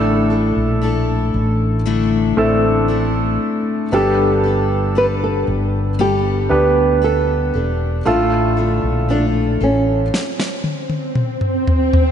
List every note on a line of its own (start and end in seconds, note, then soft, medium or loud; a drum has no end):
0.00 0.52 A1 medium
0.00 0.30 A2 medium
0.00 1.30 A2 soft
0.00 0.30 D3 medium
0.00 0.30 A3 medium
0.00 1.75 A3 medium
0.00 0.30 D4 medium
0.00 1.75 D4 soft
0.00 0.30 E4 medium
0.00 1.75 E4 soft
0.00 0.29 A4 medium
0.00 1.76 A4 medium
0.00 3.37 A4 medium
0.30 0.80 A3 soft
0.30 0.81 D4 soft
0.30 0.82 E4 soft
0.30 0.82 A4 soft
0.57 1.30 A#1 medium
0.82 1.86 A3 medium
0.82 1.86 D4 medium
0.82 1.86 E4 medium
0.82 1.87 A4 medium
1.34 2.33 A1 medium
1.86 2.89 A2 medium
1.86 2.93 D3 medium
1.86 2.88 A3 medium
1.86 2.89 D4 medium
1.86 2.89 E4 medium
1.86 2.90 A4 medium
2.37 3.37 A1 medium
2.37 3.84 A3 medium
2.37 2.44 C4 soft
2.37 3.85 E4 medium
2.37 3.85 A4 medium
2.44 3.88 D4 medium
2.88 3.92 A3 medium
2.88 3.92 D4 medium
2.88 3.93 E4 medium
2.88 3.93 A4 medium
3.92 5.44 G1 medium
3.92 5.44 G2 medium
3.92 4.44 G3 medium
3.92 5.89 B3 medium
3.92 4.44 B3 medium
3.92 5.89 D4 medium
3.92 4.44 D4 medium
3.92 4.44 G4 medium
3.92 5.89 G4 medium
3.92 4.42 A4 medium
3.92 5.90 A4 medium
4.43 4.95 D4 soft
4.43 4.95 G4 soft
4.43 4.95 A4 soft
4.95 5.98 B3 soft
4.95 5.99 D4 medium
4.95 5.99 G4 soft
4.95 6.00 A4 medium
4.95 5.05 B4 medium
5.24 6.00 A4 medium
5.48 6.47 G1 medium
5.99 7.02 G3 medium
5.99 7.00 B3 medium
5.99 7.02 D4 medium
5.99 7.02 G4 medium
5.99 7.04 A4 medium
6.49 7.50 D2 medium
6.49 7.98 B3 medium
6.49 7.98 D4 soft
6.49 7.98 G4 medium
6.49 7.98 B4 medium
7.02 7.54 B3 soft
7.02 7.54 D4 soft
7.02 7.54 G4 soft
7.02 7.52 A4 medium
7.54 8.03 E1 medium
7.54 8.05 D4 soft
7.54 8.06 G4 soft
7.54 8.06 A4 soft
8.05 8.80 A1 medium
8.05 8.57 A2 medium
8.05 9.57 A2 medium
8.05 8.58 D3 medium
8.05 10.03 D3 soft
8.05 10.02 A3 medium
8.05 8.58 A3 medium
8.05 8.57 D4 medium
8.05 10.03 F4 medium
8.05 8.57 F4 medium
8.05 8.56 A4 medium
8.05 10.03 A4 medium
8.05 swell medium
8.57 9.07 A3 soft
8.57 9.09 D4 soft
8.57 9.09 F4 soft
8.57 9.09 A4 soft
8.84 9.57 A#1 medium
9.09 9.61 A3 soft
9.09 9.61 D4 medium
9.09 9.60 F4 medium
9.09 9.59 A4 medium
9.61 10.09 A1 medium
9.61 10.14 A3 soft
9.61 11.65 C#4 medium
9.61 10.13 F4 soft
9.61 10.13 A4 soft
10.14 snare soft
10.40 snare soft
10.64 high tom medium
10.90 high tom soft
11.15 mid tom medium
11.41 mid tom medium
11.67 floor tom medium
11.93 floor tom medium